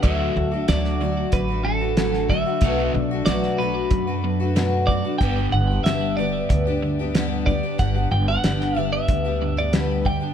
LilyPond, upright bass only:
\new Staff \with { instrumentName = "Upright bass" } { \clef bass \time 4/4 \key g \lydian \tempo 4 = 93 d,8 d,8 d,4 a,,2 | b,,8 b,,8 b,,4 fis,2 | g,,8 g,,8 g,,4 d,2 | g,,8 g,,8 g,,4 d,2 | }